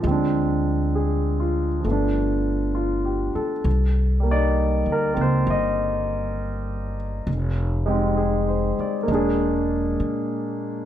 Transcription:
0.00 upright bass D2, grand piano F3 G#3
0.07 grand piano C4 D4
0.95 grand piano G#4
1.40 grand piano F4
1.80 grand piano F3 A3
1.85 upright bass G1, grand piano B3
1.91 grand piano D4
2.75 grand piano F4
3.05 grand piano G4
3.35 grand piano A4, muted upright bass stroke
3.64 upright bass C2
4.20 grand piano G3 A#3
4.31 grand piano D#4 D5
4.86 upright bass D2
4.92 grand piano A#4
5.14 upright bass C#2, grand piano A#3 C4
5.21 grand piano C5
5.47 upright bass G1, grand piano D#5
7.27 upright bass F1
7.86 grand piano G#3 C4 D#4 G4
8.17 grand piano G#4
8.49 grand piano C5
8.79 grand piano D5, muted upright bass stroke
9.03 grand piano A#3
9.07 upright bass E1, grand piano G#3 D4
9.14 grand piano G#4
10.00 upright bass A#2

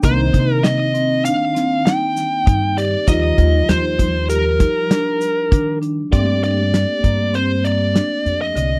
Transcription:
0.02 upright bass C2, tine electric piano D#3 A#3 D#4, marimba C4, lead electric guitar C5, kick, closed hi-hat, shaker
0.33 upright bass C3, marimba D#4, kick, snare, closed hi-hat
0.53 lead electric guitar A#4
0.63 lead electric guitar D#5, snare, closed hi-hat
0.94 marimba C4, closed hi-hat
1.25 marimba D4, lead electric guitar F5, closed hi-hat, shaker
1.55 marimba C4, snare, closed hi-hat
1.85 marimba D#4, lead electric guitar G5, snare, closed hi-hat
2.17 snare, closed hi-hat, shaker
2.46 upright bass G2, marimba D#4, kick, closed hi-hat
2.77 marimba G4, lead electric guitar D5, closed hi-hat
3.07 upright bass D#2, tine electric piano F3 G3 D#4, marimba F4, lead electric guitar D#5, kick, closed hi-hat, shaker
3.38 upright bass D#2, marimba F4, kick, closed hi-hat
3.68 upright bass D#2, lead electric guitar C5, snare, closed hi-hat, shaker
3.99 marimba D#4, kick, closed hi-hat
4.29 marimba G4, lead electric guitar A#4, closed hi-hat, shaker
4.59 marimba D#4, kick, snare, closed hi-hat, shaker
4.90 marimba D4, snare, closed hi-hat
5.21 closed hi-hat, shaker
5.51 upright bass D#3, marimba D4, kick, closed hi-hat
5.82 marimba D4, closed hi-hat
6.11 upright bass G2, tine electric piano A3 A#3 G4, marimba C4, lead electric guitar D5, kick, closed hi-hat
6.43 marimba D4, lead electric guitar D5, closed hi-hat
6.74 snare, closed hi-hat
7.03 upright bass G2, marimba A#3, kick, closed hi-hat
7.33 marimba C4, lead electric guitar C5, closed hi-hat
7.64 marimba A#3, lead electric guitar D5, closed hi-hat
7.94 marimba D4, snare, closed hi-hat
8.26 upright bass F2, closed hi-hat
8.41 lead electric guitar D#5
8.55 upright bass C2, marimba D3, closed hi-hat

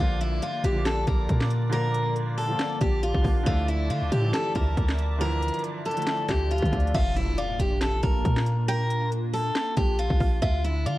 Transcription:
Already playing: felt piano D3
0.00 808-style bass A#1, felt piano F3 A#3 F4, analog synth pad A#3 D5 D6, steel-string acoustic guitar F4
0.21 steel-string acoustic guitar E4, closed hi-hat
0.42 steel-string acoustic guitar F4, closed hi-hat
0.64 808-style bass A#1, steel-string acoustic guitar G4, closed hi-hat
0.72 felt piano D3 F3 A#3
0.78 felt piano F4
0.86 steel-string acoustic guitar A4, snare, clap, closed hi-hat
1.07 808-style bass A#1, steel-string acoustic guitar A#4, kick, closed hi-hat
1.29 808-style bass A#2, kick, closed hi-hat
1.41 snare, clap
1.50 closed hi-hat
1.70 felt piano D3 F3 A#3, steel-string acoustic guitar A#4, closed hi-hat
1.76 felt piano F4
1.95 closed hi-hat
2.16 closed hi-hat
2.38 steel-string acoustic guitar A4, open hi-hat
2.47 felt piano D3 F3 A#3
2.53 felt piano F4
2.59 snare, clap, closed hi-hat
2.81 808-style bass A#1, steel-string acoustic guitar G4, kick, closed hi-hat
3.03 steel-string acoustic guitar F4, closed hi-hat
3.15 808-style bass A#1, kick
3.22 808-style bass A#1, felt piano D3 F3 A#3, kick, open hi-hat
3.28 felt piano F4
3.44 808-style bass D2, felt piano D3 F3 A3, steel-string acoustic guitar F4, analog synth pad D5 E5 A5 D6, kick, closed hi-hat
3.49 felt piano E4
3.68 steel-string acoustic guitar E4, closed hi-hat
3.90 808-style bass D3, steel-string acoustic guitar F4, closed hi-hat
4.02 808-style bass D2
4.12 808-style bass A2, steel-string acoustic guitar G4, closed hi-hat
4.20 felt piano D3 F3
4.24 felt piano E3 E4
4.33 steel-string acoustic guitar A4, snare, clap, closed hi-hat
4.55 808-style bass D2, steel-string acoustic guitar A#4, kick, closed hi-hat
4.77 808-style bass D2, kick, closed hi-hat
4.88 snare, clap
4.98 closed hi-hat
5.18 felt piano D3 E3 F3, steel-string acoustic guitar A#4, closed hi-hat
5.24 felt piano E4
5.42 closed hi-hat
5.48 closed hi-hat
5.54 closed hi-hat
5.59 closed hi-hat
5.64 closed hi-hat
5.86 steel-string acoustic guitar A4, closed hi-hat
5.91 felt piano D3, closed hi-hat
5.96 felt piano F3 A3, closed hi-hat
6.00 felt piano E4, closed hi-hat
6.07 snare, clap, closed hi-hat
6.29 808-style bass D2, steel-string acoustic guitar G4, kick, snare, clap, closed hi-hat
6.51 steel-string acoustic guitar F4, closed hi-hat
6.58 closed hi-hat
6.62 808-style bass D3, kick, closed hi-hat
6.69 808-style bass D2, felt piano D3 F3 A3, kick, closed hi-hat
6.75 felt piano D4
6.80 closed hi-hat
6.87 closed hi-hat
6.94 808-style bass A#1, analog synth pad A#3 D4 F4, steel-string acoustic guitar F4, synth pluck E5, kick, closed hi-hat, crash, impact
7.16 steel-string acoustic guitar E4, closed hi-hat
7.38 steel-string acoustic guitar F4, synth pluck D5, closed hi-hat
7.59 808-style bass A#1, steel-string acoustic guitar G4, closed hi-hat
7.81 steel-string acoustic guitar A4, snare, clap, closed hi-hat
8.03 808-style bass A#1, steel-string acoustic guitar A#4, kick, closed hi-hat
8.25 808-style bass A#2, kick, closed hi-hat
8.36 snare, clap
8.46 closed hi-hat
8.68 steel-string acoustic guitar A#4, synth pluck G5, closed hi-hat
8.90 closed hi-hat
9.12 closed hi-hat
9.33 steel-string acoustic guitar A4, open hi-hat
9.55 snare, clap, closed hi-hat
9.77 808-style bass A#1, steel-string acoustic guitar G4, kick, closed hi-hat
9.99 steel-string acoustic guitar F4, closed hi-hat
10.10 808-style bass A#1, kick
10.20 808-style bass A#1, synth pluck F5, kick, open hi-hat
10.42 808-style bass D2, analog synth pad D3 D4, steel-string acoustic guitar F4, synth pluck E5, kick, closed hi-hat
10.64 steel-string acoustic guitar E4, closed hi-hat
10.86 808-style bass D3, steel-string acoustic guitar F4, synth pluck D5, closed hi-hat

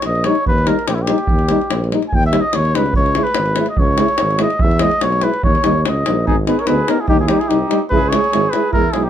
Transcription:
0.02 tuba A#1, cornet D#5, davul high
0.15 davul high
0.24 euphonium G3, french horn D#4, cornet C#5, davul high
0.35 davul high
0.46 tuba D#2, cornet B4, davul low
0.58 davul high
0.67 euphonium G3, french horn D#4, cornet A#4, davul high
0.79 davul high
0.88 tuba A#1, cornet G4, davul high
0.95 cornet E4, davul high
1.02 cornet G4
1.07 euphonium G3, french horn D#4, davul high
1.18 davul high
1.27 tuba D#2, davul low
1.39 davul high
1.49 euphonium G3, french horn D#4, davul high
1.61 davul high
1.71 tuba A#1, davul high
1.84 davul high
1.91 euphonium G3, french horn D#4, davul high
2.02 davul high
2.08 cornet G#5
2.13 tuba D#2, cornet G5, davul low
2.23 cornet E5, davul high
2.33 euphonium G3, french horn D#4, davul high
2.41 cornet D#5
2.53 tuba D#2, cornet C#5, davul high
2.65 davul high
2.75 tuba C#2, euphonium G3, french horn D#4, cornet B4, davul high
2.86 davul high
2.93 tuba C#2, cornet C#5, davul low
3.06 davul high
3.15 euphonium G#3, french horn E4, davul high
3.23 cornet B4, davul high
3.34 tuba G#1, davul high
3.46 davul high
3.56 euphonium G#3, french horn E4, davul high
3.66 cornet D#5, davul high
3.77 tuba C#2, cornet C#5, davul low
3.98 euphonium G#3, french horn E4, davul high
4.08 davul high
4.18 tuba G#1, davul high
4.31 davul high
4.39 euphonium G#3, french horn E4, cornet D#5, davul high
4.50 davul high
4.59 cornet E5, davul low
4.63 tuba E2
4.71 davul high
4.79 euphonium G#3, french horn E4, cornet D#5, davul high
4.91 davul high
5.01 tuba B1, cornet C#5, davul high
5.12 davul high
5.21 euphonium G#3, french horn E4, cornet B4, davul high
5.34 davul high
5.43 tuba D#2, cornet C#5, davul low
5.55 davul high
5.64 tuba D#2, euphonium G3, french horn D#4, davul high
5.85 tuba C#2, cornet D#5, davul high
6.06 tuba A#1, euphonium G3, french horn D#4, davul high
6.25 euphonium B3, flugelhorn D#4, french horn D#4, cornet G#4, davul low
6.29 tuba G#1
6.47 euphonium B3, french horn D#4, flugelhorn G#4, cornet B4, davul high
6.59 flugelhorn A#4, cornet C#5, davul high
6.66 euphonium B3, french horn D#4, flugelhorn G#4, cornet B4, davul high
6.70 tuba D2
6.87 euphonium B3, french horn D#4, flugelhorn G4, cornet A#4, davul high
6.99 flugelhorn E4, cornet G#4
7.08 tuba D#2, euphonium G3, french horn D#4, flugelhorn D#4, cornet G4, davul low
7.20 flugelhorn E4, cornet G#4
7.28 euphonium G3, flugelhorn D#4, french horn D#4, cornet G4, davul high
7.39 flugelhorn E4, cornet G#4, davul high
7.48 tuba C2, euphonium G3, flugelhorn D#4, french horn D#4, cornet G4, davul high
7.69 euphonium G3, french horn D#4, davul high
7.89 tuba C#2, euphonium G#3, french horn E4, flugelhorn G#4, cornet B4, davul low
8.09 euphonium G#3, french horn E4, flugelhorn G#4, cornet C#5, davul high
8.24 davul high
8.33 tuba G#1, euphonium G#3, french horn E4, davul high
8.51 euphonium G#3, french horn E4, flugelhorn G#4, cornet B4, davul high
8.70 flugelhorn E4, cornet A#4, davul low
8.75 tuba E2, euphonium G#3, french horn E4
8.92 tuba B1, euphonium G#3, flugelhorn E4, french horn E4, cornet G#4, davul high
9.03 flugelhorn D#4, cornet G4

